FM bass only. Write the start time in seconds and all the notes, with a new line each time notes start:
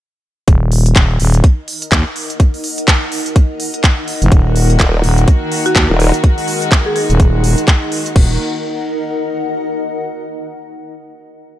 0.48 D#1
0.96 D#1
1.20 D#1
1.92 D#2
4.22 F#1
4.32 D#1
5.04 D#1
5.76 D#2
7.10 D#1
8.16 D#1